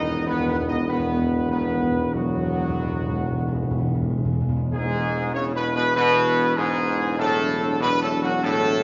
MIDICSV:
0, 0, Header, 1, 6, 480
1, 0, Start_track
1, 0, Key_signature, 4, "major"
1, 0, Tempo, 618557
1, 1172, Tempo, 643777
1, 1647, Time_signature, 4, 2, 24, 8
1, 3572, Tempo, 616016
1, 6768, End_track
2, 0, Start_track
2, 0, Title_t, "Trumpet section"
2, 0, Program_c, 0, 61
2, 0, Note_on_c, 0, 75, 122
2, 176, Note_off_c, 0, 75, 0
2, 208, Note_on_c, 0, 71, 106
2, 358, Note_off_c, 0, 71, 0
2, 367, Note_on_c, 0, 71, 96
2, 439, Note_off_c, 0, 71, 0
2, 528, Note_on_c, 0, 75, 95
2, 677, Note_off_c, 0, 75, 0
2, 686, Note_on_c, 0, 71, 98
2, 1140, Note_off_c, 0, 71, 0
2, 1168, Note_on_c, 0, 71, 91
2, 1616, Note_off_c, 0, 71, 0
2, 1634, Note_on_c, 0, 66, 94
2, 3080, Note_off_c, 0, 66, 0
2, 3568, Note_on_c, 0, 68, 115
2, 4024, Note_off_c, 0, 68, 0
2, 4047, Note_on_c, 0, 73, 101
2, 4121, Note_off_c, 0, 73, 0
2, 4214, Note_on_c, 0, 71, 107
2, 4364, Note_off_c, 0, 71, 0
2, 4373, Note_on_c, 0, 71, 111
2, 4516, Note_off_c, 0, 71, 0
2, 4526, Note_on_c, 0, 71, 124
2, 4979, Note_off_c, 0, 71, 0
2, 5006, Note_on_c, 0, 68, 118
2, 5488, Note_off_c, 0, 68, 0
2, 5491, Note_on_c, 0, 69, 118
2, 5939, Note_off_c, 0, 69, 0
2, 5970, Note_on_c, 0, 71, 117
2, 6120, Note_off_c, 0, 71, 0
2, 6131, Note_on_c, 0, 69, 108
2, 6282, Note_off_c, 0, 69, 0
2, 6296, Note_on_c, 0, 66, 110
2, 6445, Note_off_c, 0, 66, 0
2, 6452, Note_on_c, 0, 69, 127
2, 6768, Note_off_c, 0, 69, 0
2, 6768, End_track
3, 0, Start_track
3, 0, Title_t, "French horn section"
3, 0, Program_c, 1, 60
3, 0, Note_on_c, 1, 63, 127
3, 179, Note_off_c, 1, 63, 0
3, 208, Note_on_c, 1, 59, 119
3, 357, Note_off_c, 1, 59, 0
3, 376, Note_on_c, 1, 59, 115
3, 521, Note_off_c, 1, 59, 0
3, 532, Note_on_c, 1, 63, 108
3, 603, Note_off_c, 1, 63, 0
3, 684, Note_on_c, 1, 59, 108
3, 1138, Note_off_c, 1, 59, 0
3, 1173, Note_on_c, 1, 59, 108
3, 1618, Note_off_c, 1, 59, 0
3, 1646, Note_on_c, 1, 54, 114
3, 3056, Note_off_c, 1, 54, 0
3, 3572, Note_on_c, 1, 52, 97
3, 3575, Note_on_c, 1, 59, 98
3, 5463, Note_off_c, 1, 52, 0
3, 5465, Note_off_c, 1, 59, 0
3, 5493, Note_on_c, 1, 62, 109
3, 5495, Note_on_c, 1, 54, 110
3, 6768, Note_off_c, 1, 54, 0
3, 6768, Note_off_c, 1, 62, 0
3, 6768, End_track
4, 0, Start_track
4, 0, Title_t, "Trombone section"
4, 0, Program_c, 2, 61
4, 0, Note_on_c, 2, 51, 93
4, 0, Note_on_c, 2, 59, 97
4, 181, Note_off_c, 2, 51, 0
4, 198, Note_off_c, 2, 59, 0
4, 206, Note_on_c, 2, 51, 90
4, 207, Note_on_c, 2, 59, 92
4, 655, Note_off_c, 2, 51, 0
4, 656, Note_off_c, 2, 59, 0
4, 683, Note_on_c, 2, 51, 81
4, 687, Note_on_c, 2, 59, 86
4, 1138, Note_off_c, 2, 51, 0
4, 1140, Note_off_c, 2, 59, 0
4, 1173, Note_on_c, 2, 51, 77
4, 1173, Note_on_c, 2, 59, 73
4, 1618, Note_off_c, 2, 51, 0
4, 1618, Note_off_c, 2, 59, 0
4, 1645, Note_on_c, 2, 51, 81
4, 1646, Note_on_c, 2, 59, 80
4, 3300, Note_off_c, 2, 51, 0
4, 3300, Note_off_c, 2, 59, 0
4, 3571, Note_on_c, 2, 44, 111
4, 4026, Note_off_c, 2, 44, 0
4, 4049, Note_on_c, 2, 49, 112
4, 4213, Note_on_c, 2, 47, 91
4, 4214, Note_off_c, 2, 49, 0
4, 4365, Note_off_c, 2, 47, 0
4, 4375, Note_on_c, 2, 47, 99
4, 4526, Note_off_c, 2, 47, 0
4, 4535, Note_on_c, 2, 47, 126
4, 4984, Note_off_c, 2, 47, 0
4, 5004, Note_on_c, 2, 44, 116
4, 5456, Note_off_c, 2, 44, 0
4, 5484, Note_on_c, 2, 45, 116
4, 5936, Note_off_c, 2, 45, 0
4, 5963, Note_on_c, 2, 47, 115
4, 6037, Note_off_c, 2, 47, 0
4, 6136, Note_on_c, 2, 45, 102
4, 6208, Note_off_c, 2, 45, 0
4, 6289, Note_on_c, 2, 42, 99
4, 6363, Note_off_c, 2, 42, 0
4, 6450, Note_on_c, 2, 45, 114
4, 6768, Note_off_c, 2, 45, 0
4, 6768, End_track
5, 0, Start_track
5, 0, Title_t, "Timpani"
5, 0, Program_c, 3, 47
5, 22, Note_on_c, 3, 40, 43
5, 70, Note_off_c, 3, 40, 0
5, 80, Note_on_c, 3, 40, 44
5, 123, Note_off_c, 3, 40, 0
5, 133, Note_on_c, 3, 40, 53
5, 184, Note_off_c, 3, 40, 0
5, 193, Note_on_c, 3, 40, 56
5, 242, Note_off_c, 3, 40, 0
5, 251, Note_on_c, 3, 40, 52
5, 297, Note_off_c, 3, 40, 0
5, 307, Note_on_c, 3, 40, 57
5, 355, Note_off_c, 3, 40, 0
5, 365, Note_on_c, 3, 40, 56
5, 413, Note_off_c, 3, 40, 0
5, 423, Note_on_c, 3, 40, 63
5, 470, Note_off_c, 3, 40, 0
5, 479, Note_on_c, 3, 40, 62
5, 532, Note_off_c, 3, 40, 0
5, 541, Note_on_c, 3, 40, 64
5, 585, Note_off_c, 3, 40, 0
5, 594, Note_on_c, 3, 40, 60
5, 647, Note_off_c, 3, 40, 0
5, 656, Note_on_c, 3, 40, 58
5, 703, Note_off_c, 3, 40, 0
5, 712, Note_on_c, 3, 40, 61
5, 761, Note_off_c, 3, 40, 0
5, 770, Note_on_c, 3, 40, 62
5, 827, Note_off_c, 3, 40, 0
5, 835, Note_on_c, 3, 40, 56
5, 884, Note_off_c, 3, 40, 0
5, 893, Note_on_c, 3, 40, 55
5, 941, Note_off_c, 3, 40, 0
5, 950, Note_on_c, 3, 40, 66
5, 1003, Note_off_c, 3, 40, 0
5, 1012, Note_on_c, 3, 40, 62
5, 1066, Note_off_c, 3, 40, 0
5, 1074, Note_on_c, 3, 40, 65
5, 1127, Note_off_c, 3, 40, 0
5, 1136, Note_on_c, 3, 40, 66
5, 1181, Note_off_c, 3, 40, 0
5, 1190, Note_on_c, 3, 40, 63
5, 1238, Note_off_c, 3, 40, 0
5, 1247, Note_on_c, 3, 40, 63
5, 1291, Note_off_c, 3, 40, 0
5, 1299, Note_on_c, 3, 40, 63
5, 1343, Note_off_c, 3, 40, 0
5, 1352, Note_on_c, 3, 40, 67
5, 1402, Note_off_c, 3, 40, 0
5, 1411, Note_on_c, 3, 40, 72
5, 1463, Note_off_c, 3, 40, 0
5, 1472, Note_on_c, 3, 40, 73
5, 1520, Note_off_c, 3, 40, 0
5, 1528, Note_on_c, 3, 40, 78
5, 1577, Note_off_c, 3, 40, 0
5, 1586, Note_on_c, 3, 40, 74
5, 1637, Note_off_c, 3, 40, 0
5, 1646, Note_on_c, 3, 40, 79
5, 1696, Note_off_c, 3, 40, 0
5, 1705, Note_on_c, 3, 40, 78
5, 1746, Note_off_c, 3, 40, 0
5, 1755, Note_on_c, 3, 40, 81
5, 1809, Note_off_c, 3, 40, 0
5, 1818, Note_on_c, 3, 40, 91
5, 1866, Note_off_c, 3, 40, 0
5, 1875, Note_on_c, 3, 40, 89
5, 1927, Note_off_c, 3, 40, 0
5, 1936, Note_on_c, 3, 40, 81
5, 1984, Note_off_c, 3, 40, 0
5, 1993, Note_on_c, 3, 40, 76
5, 2047, Note_off_c, 3, 40, 0
5, 2056, Note_on_c, 3, 40, 93
5, 2106, Note_off_c, 3, 40, 0
5, 2115, Note_on_c, 3, 40, 99
5, 2166, Note_off_c, 3, 40, 0
5, 2174, Note_on_c, 3, 40, 87
5, 2219, Note_off_c, 3, 40, 0
5, 2228, Note_on_c, 3, 40, 89
5, 2280, Note_off_c, 3, 40, 0
5, 2289, Note_on_c, 3, 40, 101
5, 2342, Note_off_c, 3, 40, 0
5, 2351, Note_on_c, 3, 40, 97
5, 2393, Note_off_c, 3, 40, 0
5, 2402, Note_on_c, 3, 40, 97
5, 2454, Note_off_c, 3, 40, 0
5, 2463, Note_on_c, 3, 40, 99
5, 2509, Note_off_c, 3, 40, 0
5, 2518, Note_on_c, 3, 40, 107
5, 2567, Note_off_c, 3, 40, 0
5, 2576, Note_on_c, 3, 40, 103
5, 2629, Note_off_c, 3, 40, 0
5, 2638, Note_on_c, 3, 40, 109
5, 2682, Note_off_c, 3, 40, 0
5, 2691, Note_on_c, 3, 40, 107
5, 2740, Note_off_c, 3, 40, 0
5, 2749, Note_on_c, 3, 40, 101
5, 2802, Note_off_c, 3, 40, 0
5, 2811, Note_on_c, 3, 40, 115
5, 2861, Note_off_c, 3, 40, 0
5, 2870, Note_on_c, 3, 40, 114
5, 2920, Note_off_c, 3, 40, 0
5, 2929, Note_on_c, 3, 40, 104
5, 2977, Note_off_c, 3, 40, 0
5, 2986, Note_on_c, 3, 40, 109
5, 3034, Note_off_c, 3, 40, 0
5, 3043, Note_on_c, 3, 40, 106
5, 3092, Note_off_c, 3, 40, 0
5, 3101, Note_on_c, 3, 40, 103
5, 3151, Note_off_c, 3, 40, 0
5, 3160, Note_on_c, 3, 40, 103
5, 3205, Note_off_c, 3, 40, 0
5, 3214, Note_on_c, 3, 40, 112
5, 3265, Note_off_c, 3, 40, 0
5, 3274, Note_on_c, 3, 40, 106
5, 3324, Note_off_c, 3, 40, 0
5, 3333, Note_on_c, 3, 40, 113
5, 3385, Note_off_c, 3, 40, 0
5, 3394, Note_on_c, 3, 40, 111
5, 3442, Note_off_c, 3, 40, 0
5, 3451, Note_on_c, 3, 40, 116
5, 3508, Note_off_c, 3, 40, 0
5, 3565, Note_on_c, 3, 40, 110
5, 4265, Note_off_c, 3, 40, 0
5, 6768, End_track
6, 0, Start_track
6, 0, Title_t, "Tuba"
6, 0, Program_c, 4, 58
6, 0, Note_on_c, 4, 28, 98
6, 3301, Note_off_c, 4, 28, 0
6, 3572, Note_on_c, 4, 28, 100
6, 6768, Note_off_c, 4, 28, 0
6, 6768, End_track
0, 0, End_of_file